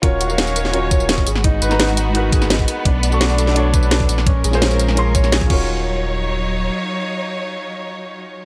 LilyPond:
<<
  \new Staff \with { instrumentName = "Grand piano" } { \time 4/4 \key ees \minor \tempo 4 = 170 <f' ges' bes' des''>8. <ges' bes' des'' f''>4~ <ges' bes' des'' f''>16 <f' ges' bes' des''>4. r8 | r8. <ees' ges' ces'' bes''>4~ <ees' ges' ces'' bes''>16 <ees' ges' bes' ces''>2 | r8. <d' fis' a' des'''>4~ <d' fis' a' des'''>16 <d' fis' a' des''>2 | r8. <des' f' aes' c''>4~ <des' f' aes' c''>16 <des' f' aes' c'''>4. <f' ges' bes' des''>8~ |
<f' ges' bes' des''>1~ | <f' ges' bes' des''>1 | }
  \new Staff \with { instrumentName = "Felt piano" } { \time 4/4 \key ees \minor des'8 ges'8 des'8 bes'8 des'8 des''8 des'8 aes'8 | ees'8 ces''16 r16 ees'8 ees''16 r16 ees'8 aes'8 ees'8 ces''8 | d'16 r16 d''8 d'16 r16 a'8 d'8 b'16 r16 d'8 d''16 r16 | des'8 aes'8 des'8 bes'8 des'16 r16 des''8 aes'16 r16 des'8~ |
des'8 r2. r8 | r1 | }
  \new Staff \with { instrumentName = "String section" } { \time 4/4 \key ees \minor << { des''2.~ des''8 ces'8~ | ces'1~ | ces'1 | bes'2.~ bes'8 <ges ees' des''>8~ |
<ges ees' des''>1~ | <ges ees' des''>1 | } \\ { <ges ees'>2.~ <ges ees'>8 <aes ges'>8~ | <aes ges'>1 | <a d'>1 | <aes des'>2.~ <aes des'>8 r8 |
r1 | r1 | } >> }
  \new Staff \with { instrumentName = "Sub bass" } { \clef bass \time 4/4 \key ees \minor ees,,2.~ ees,,8 aes,,8~ | aes,,8 aes,,2. r8 | b,,2.~ b,,8 bes,,8~ | bes,,8 bes,,2. ees,,8~ |
ees,,2. r4 | r1 | }
  \new DrumStaff \with { instrumentName = "Drums" } \drummode { \time 4/4 <hh bd>8 <hh tamb>16 tamb16 <hh sn>16 tamb16 <hh tamb>16 sn16 hh8 <hh bd tamb>16 tamb16 <hh sn>16 bd16 <hho tamb>16 sn16 | <hh bd>8 <hh tamb>16 <sn tamb>16 <hh sn>16 tamb16 <hh tamb>8 hh8 <hh bd tamb>16 <sn tamb>16 <hh sn>16 bd16 <hho tamb>8 | <hh bd>8 <hh tamb>16 tamb16 <hh sn>16 tamb16 <hh tamb>16 sn16 hh8 <hh bd tamb>16 tamb16 <hh sn>16 bd16 <hho tamb>16 sn16 | <hh bd>8 <hh tamb>16 <sn tamb>16 <hh sn>16 tamb16 <hh tamb>16 sn16 hh8 <hh bd tamb>16 <sn tamb>16 <hh sn>16 bd16 <cymc bd>8 |
r4 r4 r4 r4 | r4 r4 r4 r4 | }
>>